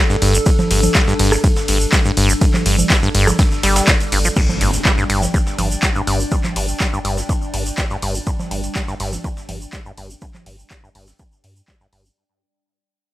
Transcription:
Already playing: ambient pad G3 D4 A4
0.10 acid bass G2, snare, shaker
0.22 sub bass G1, acid bass G2, open hi-hat, ride
0.34 acid bass F2, shaker
0.46 acid bass G2, kick, ride, shaker
0.59 snare, low conga, shaker
0.71 sub bass G1, acid bass G2, open hi-hat, ride
0.83 ride, low conga, shaker
0.95 acid bass G3, kick, snare, clap, ride, shaker
1.08 acid bass G2, snare, shaker
1.19 sub bass G1, acid bass G2, snare, open hi-hat, ride
1.32 acid bass F2, cross-stick, snare, shaker
1.44 acid bass G2, kick, ride, shaker
1.56 snare, shaker
1.68 sub bass G1, acid bass G2, open hi-hat, ride
1.80 shaker
1.92 acid bass G3, kick, snare, clap, ride, shaker
2.05 acid bass G2, shaker
2.17 sub bass G1, acid bass G2, open hi-hat, ride
2.29 acid bass F2, shaker
2.41 acid bass G2, kick, ride, shaker
2.54 clap, low conga, shaker
2.66 sub bass G1, acid bass G2, open hi-hat, ride
2.78 low conga, shaker
2.90 acid bass G3, kick, snare, clap, ride, shaker
3.03 acid bass G2, shaker
3.15 sub bass G1, acid bass G2, open hi-hat, ride
3.27 acid bass F2, cross-stick, snare, low conga, shaker
3.39 acid bass G2, kick, snare, ride, shaker
3.52 snare, shaker
3.63 sub bass G1, acid bass G3, snare, open hi-hat, ride
3.76 snare, ride, shaker
3.88 acid bass G2, kick, snare, clap, ride, shaker
4.00 ride, shaker
4.12 sub bass G1, acid bass G2, open hi-hat, ride
4.25 acid bass F3, shaker
4.36 acid bass G2, ambient pad G3 D4 D5 G5, kick, crash, ride, impact, shaker
4.49 snare, low conga, shaker
4.61 sub bass G1, acid bass G2, open hi-hat, ride
4.73 ride, shaker
4.85 acid bass G3, kick, snare, clap, ride, shaker
4.98 acid bass G2, snare, shaker
5.10 sub bass G1, acid bass G2, snare, open hi-hat, ride
5.22 acid bass F2, snare, low conga, shaker
5.34 acid bass G2, kick, ride, shaker
5.47 snare, shaker
5.58 sub bass G1, acid bass G2, open hi-hat, ride, low conga
5.71 shaker
5.83 acid bass G3, kick, snare, clap, ride, shaker
5.95 acid bass G2, shaker
6.07 sub bass G1, acid bass G2, open hi-hat, ride
6.20 acid bass F2, shaker
6.31 acid bass G2, kick, ride, shaker
6.44 clap, low conga, shaker
6.56 sub bass G1, acid bass G2, open hi-hat, ride
6.68 shaker
6.80 acid bass G3, kick, snare, clap, ride, shaker
6.93 acid bass G2, shaker
7.05 sub bass G1, acid bass G2, open hi-hat, ride
7.17 acid bass F2, snare, shaker
7.29 acid bass G2, kick, ride, shaker
7.42 shaker
7.54 sub bass G1, acid bass G2, open hi-hat, ride
7.66 shaker
7.77 acid bass G3, kick, snare, clap, ride, shaker
7.90 acid bass G2, snare, shaker
8.02 sub bass G1, acid bass G2, open hi-hat, ride
8.15 acid bass F2, shaker
8.27 acid bass G2, kick, ride, shaker
8.39 snare, low conga, shaker
8.51 sub bass G1, acid bass G2, open hi-hat, ride
8.63 ride, shaker
8.75 acid bass G3, kick, snare, clap, ride, shaker
8.88 acid bass G2, snare, shaker
9.00 sub bass G1, acid bass G2, snare, open hi-hat, ride
9.13 acid bass F2, snare, low conga, shaker
9.24 acid bass G2, kick, ride, shaker
9.37 snare, shaker
9.49 sub bass G1, acid bass G2, open hi-hat, ride, low conga
9.61 shaker
9.73 acid bass G3, kick, snare, clap, ride, shaker
9.86 acid bass G2, shaker
9.97 sub bass G1, acid bass G2, open hi-hat, ride
10.10 acid bass F2, shaker
10.21 acid bass G2, kick, ride, shaker
10.34 clap, low conga, shaker
10.46 sub bass G1, acid bass G2, open hi-hat, ride
10.59 shaker
10.70 acid bass G3, kick, snare, clap, ride, shaker
10.83 acid bass G2, shaker
10.95 sub bass G1, acid bass G2, open hi-hat, ride
11.07 acid bass F2, snare, shaker
11.19 acid bass G2, kick, ride, shaker
11.32 shaker
11.44 acid bass G2, sub bass G2, open hi-hat, ride
11.56 shaker
11.68 acid bass G3, kick, snare, clap, ride, shaker
11.81 acid bass G2, snare, shaker
11.92 sub bass G1, acid bass G2, open hi-hat, ride
12.05 acid bass F2, shaker

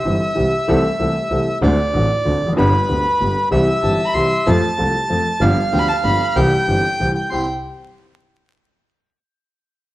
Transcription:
Already playing: bandoneon E5
0.05 double bass G1, upright piano G1 G2 E3 G3 C4 G4
0.35 upright piano C2 C3 E3 G3 C4 G4, double bass C2
0.68 double bass C2, upright piano C2 C3 E3 A3 C4 A4
0.99 double bass C2, upright piano C2 C3 E3 A3 C4 A4
1.30 double bass C2, upright piano C2 C3 E3 A3 C4 A4
1.62 double bass D2, upright piano D2 D3 A3 C4 F#4, bandoneon D5
1.93 upright piano A1 A2 D3 A3 C4 F#4, double bass A1
2.25 double bass D2, upright piano D2 D3 A3 C4 F#4
2.41 double bass F1
2.46 upright piano E2 F2
2.53 double bass G1, upright piano F#2 D3
2.57 upright piano G1 G2 G3 B3 G4, bandoneon B4
2.89 upright piano D2 D3 G3 B3 G4, double bass D2
3.20 double bass G1, upright piano G1 G2 D3 G3 B3 G4
3.51 double bass C2, upright piano C2 C3 E3 G3 C4 G4, bandoneon E5
3.83 double bass G1, upright piano G1 G2 E3 G3 C4 G4, violin A5
4.05 violin A#5 B5
4.14 double bass C2, upright piano C2 C3 E3 G3 C4 G4, violin C6
4.46 double bass F2, upright piano F2 F3 A3 C4 A4, bandoneon A5
4.77 upright piano C2 C3 F3 A3 C4 A4, double bass C2
5.09 double bass F2, upright piano F2 F3 A3 C4 A4
5.41 double bass G1, upright piano G1 G2 F3 B3 D4 G4, bandoneon F5
5.72 double bass D2, upright piano D2 D3 F3 B3 D4 G4, violin G5
5.79 violin B5
5.89 violin A5
6.04 double bass G1, upright piano G1 G2 F3 B3 D4 G4, violin B5
6.36 double bass C2, upright piano C2 C3 E3 G3 C4 G4, bandoneon G5
6.68 double bass G1, upright piano G1 G2 E3 G3 C4 G4
7.00 upright piano C2 C3 E3 G3 C4 G4, double bass C2
7.15 bandoneon G5
7.30 upright piano C2 C4 E4 G4, double bass C2, violin G5, bandoneon C6

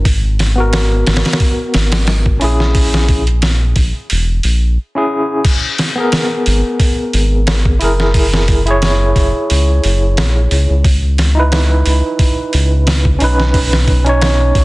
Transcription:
Already playing: analog synth bass G#1
0.05 kick, open hi-hat
0.39 snare, open hi-hat
0.55 tine electric piano B3 F#4
0.60 tine electric piano A#4
0.73 snare, open hi-hat
1.07 analog synth bass G#1, snare, open hi-hat
1.16 snare, open hi-hat
1.25 snare, open hi-hat
1.33 snare, open hi-hat
1.40 kick, open hi-hat
1.74 analog synth bass G#1, snare, open hi-hat
1.92 snare, open hi-hat
2.07 snare, open hi-hat
2.26 kick
2.40 analog synth bass A#1, tine electric piano C#4 E4, open hi-hat
2.44 tine electric piano G#4
2.60 snare
2.75 kick, open hi-hat
2.94 snare
3.09 kick, open hi-hat
3.27 closed hi-hat
3.42 snare, open hi-hat
3.76 analog synth bass A#1, kick, open hi-hat
4.10 analog synth bass E1, open hi-hat
4.43 analog synth bass A#1, open hi-hat
4.95 tine electric piano C#4 E4 G#4
5.45 kick, open hi-hat, crash
5.78 snare, open hi-hat
5.96 tine electric piano B3 G#4
6.00 tine electric piano A#4
6.12 snare, open hi-hat
6.46 analog synth bass G#1, open hi-hat
6.80 kick, open hi-hat
7.13 analog synth bass G#1, open hi-hat
7.47 snare, open hi-hat
7.65 kick
7.79 analog synth bass F#1, tine electric piano E4 G#4, open hi-hat
7.84 tine electric piano A#4
8.00 snare
8.14 kick, open hi-hat
8.34 snare
8.48 kick, open hi-hat
8.66 tine electric piano E4 G#4, closed hi-hat
8.71 tine electric piano C#5
8.82 snare, open hi-hat
9.16 analog synth bass F#1, kick, open hi-hat
9.50 analog synth bass C#2, open hi-hat
9.84 analog synth bass F#1, open hi-hat
10.17 analog synth bass A#1, snare, open hi-hat
10.51 analog synth bass C#2, open hi-hat
10.70 analog synth bass C#2
10.84 kick, open hi-hat
11.18 snare, open hi-hat
11.35 tine electric piano D#4 E4
11.40 tine electric piano B4
11.52 snare, open hi-hat
11.86 analog synth bass C#2, open hi-hat
12.19 kick, open hi-hat
12.53 analog synth bass C#2, open hi-hat
12.87 snare, open hi-hat
13.05 kick
13.19 analog synth bass B1, tine electric piano C#4 D#4, open hi-hat
13.24 tine electric piano B4
13.40 snare
13.54 kick, open hi-hat
13.73 snare
13.88 kick, open hi-hat
14.04 tine electric piano C#4 D#4, closed hi-hat
14.09 tine electric piano C#5
14.21 snare, open hi-hat
14.55 analog synth bass B1, kick, open hi-hat

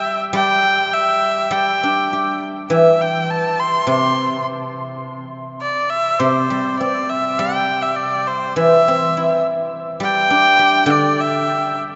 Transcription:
Already playing: guzheng G3, erhu E5
0.33 guzheng G3, erhu G5
0.93 erhu E5
1.51 guzheng G3, erhu G5
1.83 guzheng D4
2.13 guzheng G4
2.70 guzheng E3, erhu E5
3.01 erhu G5
3.30 erhu A5
3.60 erhu C6
3.87 guzheng C3, erhu C6
5.62 erhu D5
5.90 erhu E5
6.19 guzheng C3, erhu C5
6.50 guzheng G3
6.80 guzheng C4, erhu D5
7.09 erhu E5
7.39 guzheng G3, erhu G5
7.82 erhu E5
7.96 erhu D5
8.27 erhu C5
8.56 guzheng E3, erhu E5
8.88 guzheng C4
9.17 guzheng E4
10.00 guzheng G3, erhu G5
10.30 guzheng D4
10.59 guzheng G4
10.86 guzheng D3
10.91 erhu D5
11.20 erhu E5

